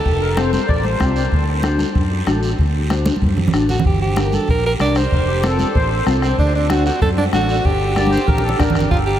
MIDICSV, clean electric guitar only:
0, 0, Header, 1, 2, 480
1, 0, Start_track
1, 0, Key_signature, -2, "minor"
1, 0, Tempo, 316289
1, 80, Time_signature, 4, 2, 24, 8
1, 13954, End_track
2, 0, Start_track
2, 0, Title_t, "Clean electric guitar"
2, 0, Program_c, 0, 27
2, 560, Note_on_c, 0, 60, 78
2, 566, Note_on_c, 0, 65, 71
2, 575, Note_on_c, 0, 69, 84
2, 897, Note_off_c, 0, 60, 0
2, 901, Note_off_c, 0, 65, 0
2, 903, Note_off_c, 0, 69, 0
2, 1516, Note_on_c, 0, 60, 82
2, 1524, Note_on_c, 0, 65, 74
2, 1533, Note_on_c, 0, 67, 93
2, 1856, Note_off_c, 0, 60, 0
2, 1860, Note_off_c, 0, 65, 0
2, 1862, Note_off_c, 0, 67, 0
2, 2474, Note_on_c, 0, 62, 76
2, 2481, Note_on_c, 0, 66, 67
2, 2486, Note_on_c, 0, 69, 89
2, 2815, Note_off_c, 0, 62, 0
2, 2818, Note_off_c, 0, 66, 0
2, 2821, Note_off_c, 0, 69, 0
2, 3438, Note_on_c, 0, 62, 79
2, 3448, Note_on_c, 0, 66, 74
2, 3453, Note_on_c, 0, 69, 94
2, 3778, Note_off_c, 0, 62, 0
2, 3779, Note_off_c, 0, 66, 0
2, 3784, Note_off_c, 0, 69, 0
2, 4399, Note_on_c, 0, 62, 78
2, 4408, Note_on_c, 0, 66, 66
2, 4413, Note_on_c, 0, 72, 86
2, 4738, Note_off_c, 0, 62, 0
2, 4740, Note_off_c, 0, 66, 0
2, 4744, Note_off_c, 0, 72, 0
2, 5361, Note_on_c, 0, 62, 82
2, 5369, Note_on_c, 0, 66, 72
2, 5378, Note_on_c, 0, 69, 86
2, 5698, Note_off_c, 0, 62, 0
2, 5703, Note_off_c, 0, 66, 0
2, 5705, Note_off_c, 0, 69, 0
2, 6315, Note_on_c, 0, 62, 68
2, 6323, Note_on_c, 0, 67, 59
2, 6331, Note_on_c, 0, 70, 74
2, 6655, Note_off_c, 0, 62, 0
2, 6660, Note_off_c, 0, 67, 0
2, 6661, Note_off_c, 0, 70, 0
2, 7282, Note_on_c, 0, 62, 68
2, 7289, Note_on_c, 0, 67, 64
2, 7303, Note_on_c, 0, 70, 72
2, 7619, Note_off_c, 0, 62, 0
2, 7624, Note_off_c, 0, 67, 0
2, 7627, Note_off_c, 0, 70, 0
2, 8240, Note_on_c, 0, 60, 82
2, 8248, Note_on_c, 0, 65, 76
2, 8251, Note_on_c, 0, 69, 89
2, 8578, Note_off_c, 0, 60, 0
2, 8581, Note_off_c, 0, 65, 0
2, 8583, Note_off_c, 0, 69, 0
2, 9198, Note_on_c, 0, 60, 88
2, 9205, Note_on_c, 0, 65, 75
2, 9208, Note_on_c, 0, 69, 89
2, 9537, Note_off_c, 0, 60, 0
2, 9539, Note_off_c, 0, 65, 0
2, 9542, Note_off_c, 0, 69, 0
2, 10165, Note_on_c, 0, 62, 66
2, 10171, Note_on_c, 0, 66, 64
2, 10177, Note_on_c, 0, 69, 69
2, 10500, Note_off_c, 0, 62, 0
2, 10503, Note_off_c, 0, 66, 0
2, 10506, Note_off_c, 0, 69, 0
2, 11116, Note_on_c, 0, 62, 70
2, 11128, Note_on_c, 0, 66, 66
2, 11131, Note_on_c, 0, 69, 78
2, 11457, Note_off_c, 0, 62, 0
2, 11459, Note_off_c, 0, 66, 0
2, 11463, Note_off_c, 0, 69, 0
2, 12075, Note_on_c, 0, 62, 63
2, 12080, Note_on_c, 0, 67, 58
2, 12089, Note_on_c, 0, 70, 75
2, 12415, Note_off_c, 0, 62, 0
2, 12418, Note_off_c, 0, 67, 0
2, 12421, Note_off_c, 0, 70, 0
2, 13029, Note_on_c, 0, 62, 82
2, 13042, Note_on_c, 0, 70, 92
2, 13043, Note_on_c, 0, 67, 74
2, 13373, Note_off_c, 0, 62, 0
2, 13376, Note_off_c, 0, 67, 0
2, 13378, Note_off_c, 0, 70, 0
2, 13954, End_track
0, 0, End_of_file